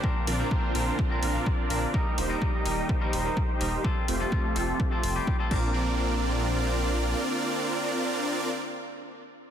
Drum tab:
CC |--------|--------|-------x|--------|
HH |-o-o-o-o|-o-o-o-o|-o-o-o--|--------|
BD |o-o-o-o-|o-o-o-o-|o-o-o-oo|--------|

CC |--------|
HH |--------|
BD |--------|